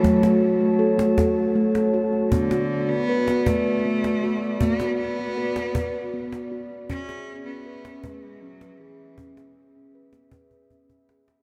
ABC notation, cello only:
X:1
M:3/4
L:1/16
Q:1/4=79
K:Bdor
V:1 name="Cello"
E,2 z8 z2 | D,3 B,3 A,6 | B,2 B,8 z2 | C3 B,3 A, G, F,2 E,2- |
E,2 z8 z2 |]